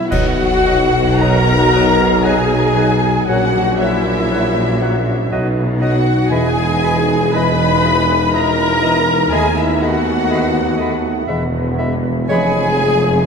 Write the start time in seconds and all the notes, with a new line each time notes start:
Already playing: D#3 F#3 B3 D#4 F#4
0.09 B1 B2 F#3 D#4 F#4 D#5 F#5, concert bass drum, crash
0.38 F#3
0.64 F#3 D#4 D#5 F#5
0.92 F#4
1.18 F#3 D#4 A#4 D#5 F#5 A#5
1.46 D#5
1.72 F#3 D#5 F#5
1.97 D#5
2.23 F#3 F#4 G#4 D#5 F#5 G#5
2.49 D#4
2.75 F#3 D#5 F#5
3.01 B3
3.26 A#1 A#2 F#3 C#4 F#4 C#5 F#5
3.31 F#5
3.55 F#3
3.80 F#3 C#4 E4 C#5 E5 F#5
4.06 F#4
4.31 F#3 C#4 C#5 F#5
4.56 C#5
4.81 F#3 C#5 F#5
5.05 C#5
5.30 B1 B2 F#3 D#4 D#5 F#5
5.56 B3
5.80 F#3 D#4 F#4 D#5 F#5
6.05 F#4
6.30 E1 E2 E3 D#4 G#4 D#5 G#5 B5
6.56 D#4
6.82 E3 D#5 B5
7.10 B4
7.34 E3 D#4 B4 D#5 B5
7.60 G#5
7.85 E3 D#5 B5
8.10 G#5
8.34 E3 A#4 D#5 A#5 B5
8.60 B4
8.83 E3 G#4 D#5 B5
9.10 D#4
9.31 D#2 D#3 A3 B3 G#4 D#5 G#5 B5
9.56 B3 E4 E5
9.80 A3 F#4 D#5 F#5 B5
10.05 A4
10.30 A3 B4 D#5 B5
10.54 F#5
10.77 A3 D#5 A5 B5
11.04 F#5
11.27 E1 E2 E3 G#3 B3 E5 B5
11.55 E4
11.78 G#3 G#4 E5 B5
12.03 B4
12.28 F1 F2 G#3 C#4 G#4 C#5 G#5 B5
12.55 B3
12.80 C#4